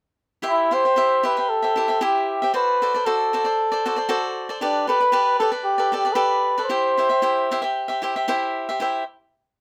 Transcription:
0.42 0.70 E4 soft
0.42 0.71 G4 soft
0.42 0.71 C5 medium
0.42 0.72 E5 medium
0.49 0.75 E4 medium
0.71 0.84 E4 soft
0.71 0.84 G4 soft
0.71 0.84 C5 medium
0.71 1.27 C5 medium
0.71 0.84 E5 soft
0.85 0.96 G4 soft
0.85 0.96 C5 soft
0.85 0.97 E5 soft
0.96 1.22 E4 medium
0.96 1.22 G4 medium
0.96 1.23 C5 medium
0.96 1.24 E5 medium
1.23 1.36 E4 soft
1.23 1.36 G4 medium
1.23 1.51 B4 medium
1.23 1.36 C5 soft
1.23 1.36 E5 medium
1.37 1.63 G4 soft
1.37 1.63 C5 soft
1.37 1.61 E5 soft
1.49 2.05 A4 medium
1.62 1.76 G4 soft
1.62 1.76 C5 soft
1.62 1.77 E5 soft
1.76 1.88 E4 soft
1.76 1.89 G4 soft
1.76 1.88 C5 medium
1.76 1.87 E5 medium
1.88 2.00 G4 soft
1.88 2.01 C5 soft
1.88 2.01 E5 soft
2.01 2.41 E4 medium
2.01 2.41 G4 medium
2.01 2.54 G4 medium
2.01 2.42 C5 medium
2.01 2.41 E5 medium
2.42 2.53 G4 soft
2.42 2.53 C5 soft
2.42 2.54 E5 soft
2.54 2.81 F#4 soft
2.54 2.81 A4 medium
2.54 3.07 B4 medium
2.54 2.82 C5 medium
2.54 2.82 D5 medium
2.82 2.94 F#4 soft
2.82 2.94 A4 medium
2.82 2.94 C5 soft
2.82 2.93 D5 medium
2.94 3.05 A4 soft
2.94 3.05 C5 soft
2.94 3.06 D5 soft
3.05 3.32 F#4 medium
3.05 4.38 A4 medium
3.05 3.33 A4 medium
3.05 3.33 C5 medium
3.05 3.33 D5 medium
3.33 3.45 F#4 soft
3.33 3.45 A4 medium
3.33 3.44 C5 soft
3.33 3.43 D5 medium
3.44 3.72 A4 soft
3.44 3.72 C5 soft
3.44 3.70 D5 soft
3.72 3.85 A4 soft
3.72 3.86 C5 soft
3.72 3.85 D5 medium
3.86 3.98 F#4 medium
3.86 3.97 A4 medium
3.86 3.96 C5 medium
3.86 3.95 D5 medium
3.96 4.08 A4 soft
3.96 4.08 C5 soft
3.96 4.09 D5 soft
4.09 4.49 F#4 medium
4.09 4.49 A4 medium
4.09 4.49 C5 medium
4.09 4.48 D5 medium
4.49 4.61 A4 soft
4.49 4.62 C5 soft
4.49 4.61 D5 soft
4.61 4.87 D4 medium
4.61 4.86 G4 medium
4.61 4.88 A4 medium
4.61 4.88 B4 medium
4.61 4.88 D5 medium
4.87 5.00 G4 soft
4.87 5.01 A4 soft
4.87 5.37 B4 medium
4.87 5.00 B4 soft
4.87 4.99 D5 medium
5.00 5.12 A4 soft
5.00 5.12 B4 soft
5.00 5.12 D5 soft
5.12 5.39 G4 medium
5.12 5.39 A4 medium
5.12 5.40 B4 medium
5.12 5.41 D5 medium
5.39 5.52 G4 soft
5.39 5.50 A4 medium
5.39 5.51 A4 medium
5.39 5.51 B4 medium
5.39 5.50 D5 medium
5.52 5.78 A4 soft
5.52 5.78 B4 soft
5.52 5.77 D5 soft
5.65 6.15 G4 medium
5.78 5.92 A4 soft
5.78 5.92 B4 soft
5.78 5.92 D5 soft
5.92 6.04 G4 soft
5.92 6.05 A4 medium
5.92 6.05 B4 medium
5.92 6.04 D5 medium
6.05 6.14 A4 soft
6.05 6.15 B4 soft
6.05 6.15 D5 medium
6.13 6.56 G4 medium
6.13 6.56 A4 medium
6.13 6.64 B4 medium
6.13 6.56 B4 medium
6.13 6.56 D5 medium
6.58 6.69 A4 soft
6.58 6.69 B4 soft
6.58 6.69 D5 medium
6.65 7.67 C5 medium
6.69 6.96 E4 medium
6.69 6.97 G4 medium
6.69 6.97 C5 medium
6.69 6.97 E5 medium
6.98 7.09 E4 soft
6.98 7.09 G4 soft
6.98 7.09 C5 soft
6.98 7.08 E5 medium
7.09 7.21 G4 soft
7.09 7.21 C5 soft
7.09 7.21 E5 soft
7.22 7.50 E4 medium
7.22 7.50 G4 medium
7.22 7.50 C5 medium
7.22 7.50 E5 medium
7.51 7.62 E4 medium
7.51 7.62 G4 soft
7.51 7.61 C5 medium
7.51 7.61 E5 medium
7.62 7.89 G4 soft
7.62 7.88 C5 soft
7.62 7.87 E5 medium
7.88 8.02 G4 soft
7.88 8.02 C5 soft
7.88 8.02 E5 soft
8.02 8.14 E4 soft
8.02 8.15 G4 medium
8.02 8.15 C5 medium
8.02 8.15 E5 medium
8.16 8.27 G4 soft
8.16 8.28 C5 soft
8.16 8.28 E5 soft
8.28 8.69 E4 medium
8.28 8.68 G4 medium
8.28 8.68 C5 medium
8.28 8.68 E5 medium
8.69 8.79 G4 soft
8.69 8.80 C5 soft
8.69 8.81 E5 soft
8.80 9.03 E4 medium
8.80 9.03 G4 medium
8.80 9.03 C5 medium
8.80 9.04 E5 medium

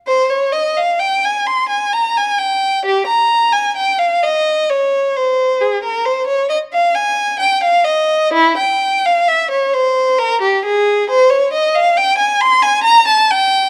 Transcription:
0.07 0.28 C5 medium
0.30 0.53 C#5 medium
0.52 0.76 D#5 medium
0.77 1.00 F5 medium
0.99 1.23 G5 medium
1.24 1.47 G#5 medium
1.46 1.69 C6 medium
1.69 1.91 G#5 medium
1.93 2.15 A#5 medium
2.17 2.38 G#5 medium
2.38 2.83 G5 medium
2.86 3.06 G4 medium
3.07 3.51 A#5 medium
3.52 3.75 G#5 medium
3.76 3.98 G5 medium
3.98 4.21 F5 medium
4.23 4.68 D#5 medium
4.70 5.14 C#5 medium
5.16 5.60 C5 medium
5.61 5.82 G#4 medium
5.83 6.04 A#4 medium
6.05 6.27 C5 medium
6.27 6.49 C#5 medium
6.49 6.57 D#5 medium
6.73 6.94 F5 medium
6.95 7.40 G#5 medium
7.39 7.62 G5 medium
7.63 7.86 F5 medium
7.84 8.33 D#5 medium
8.33 8.57 E4 medium
8.57 9.03 G5 medium
9.06 9.28 F5 medium
9.28 9.50 E5 medium
9.51 9.72 C#5 medium
9.73 10.17 C5 medium
10.18 10.40 A#4 medium
10.42 10.63 G4 medium
10.65 11.08 G#4 medium
11.10 11.31 C5 medium
11.30 11.52 C#5 medium
11.53 11.75 D#5 medium
11.75 11.97 F5 medium
11.97 12.20 G5 medium
12.18 12.41 G#5 medium
12.41 12.64 C6 medium
12.62 12.86 G#5 medium
12.83 13.07 A#5 medium
13.07 13.30 A5 medium
13.31 13.69 G5 medium

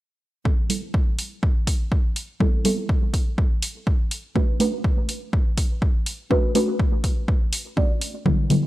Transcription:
0.45 0.66 G3 medium
0.45 0.66 B3 medium
0.45 0.66 C4 medium
0.45 0.66 E4 medium
0.45 0.66 A4 medium
0.45 kick loud
0.69 0.84 G3 medium
0.69 0.84 B3 medium
0.69 0.84 C4 medium
0.69 0.85 E4 medium
0.69 0.85 A4 medium
0.69 open hi-hat loud
0.94 kick loud
1.19 open hi-hat medium
1.43 kick loud
1.67 kick medium
1.67 open hi-hat loud
1.92 kick loud
2.16 open hi-hat medium
2.40 2.61 G3 medium
2.40 2.61 B3 medium
2.40 2.61 C4 medium
2.40 2.61 E4 medium
2.40 2.61 A4 medium
2.40 kick loud
2.64 2.79 G3 medium
2.64 2.80 B3 medium
2.64 2.80 C4 medium
2.64 2.80 E4 medium
2.64 2.80 A4 medium
2.64 open hi-hat loud
2.89 kick loud
3.14 kick medium
3.14 open hi-hat medium
3.38 kick loud
3.63 open hi-hat loud
3.87 kick loud
4.11 open hi-hat medium
4.35 4.56 A3 medium
4.35 4.56 C#4 medium
4.35 4.56 D4 medium
4.35 4.56 F#4 medium
4.35 4.56 B4 loud
4.35 kick loud
4.60 4.75 A3 medium
4.60 4.75 C#4 medium
4.60 4.75 D4 medium
4.60 4.75 F#4 medium
4.60 4.75 B4 medium
4.60 open hi-hat loud
4.84 kick loud
5.09 open hi-hat medium
5.33 kick loud
5.58 kick medium
5.58 open hi-hat loud
5.82 kick loud
6.06 open hi-hat medium
6.30 6.51 A3 medium
6.30 6.51 C#4 medium
6.30 6.51 D4 medium
6.30 6.51 F#4 medium
6.30 6.51 B4 medium
6.30 kick loud
6.55 6.70 A3 medium
6.55 6.70 C#4 medium
6.55 6.70 D4 medium
6.55 6.70 F#4 medium
6.55 6.70 B4 medium
6.55 open hi-hat loud
6.79 kick loud
7.04 kick medium
7.04 open hi-hat medium
7.28 kick loud
7.53 open hi-hat loud
7.77 7.92 A3 medium
7.77 7.92 C#4 medium
7.77 7.92 D4 medium
7.77 7.92 F#4 medium
7.77 7.92 D5 medium
7.77 kick loud
8.01 open hi-hat medium
8.25 8.46 D3 medium
8.25 8.46 F#3 medium
8.25 8.46 G3 medium
8.25 8.46 B3 medium
8.25 8.46 E4 medium
8.25 kick loud
8.50 8.65 D3 medium
8.50 8.65 F#3 medium
8.50 8.65 G3 medium
8.50 8.65 B3 medium
8.50 8.65 E4 medium
8.50 open hi-hat loud

